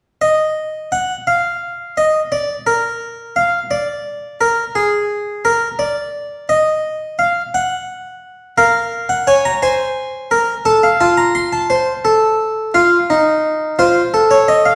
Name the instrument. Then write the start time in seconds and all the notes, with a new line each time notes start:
harpsichord
0.21 D#5
0.92 F#5
1.27 F5
1.97 D#5
2.32 D5
2.67 A#4
3.36 F5
3.71 D5
4.41 A#4
4.75 G#4
5.45 A#4
5.79 D5
6.49 D#5
7.19 F5
7.54 F#5
8.58 A#4 F5
9.09 F#5
9.27 C#5 G#5
9.45 A#5
9.62 C5 G#5
10.31 A#4
10.65 A4 A5
10.83 F5
11.01 F4 A5
11.17 A#5
11.35 C6
11.53 A5
11.70 C5
12.05 A4
12.74 F4 F5
13.10 D#4
13.79 F4 C5
14.14 A4
14.31 C#5
14.48 D#5
14.65 F5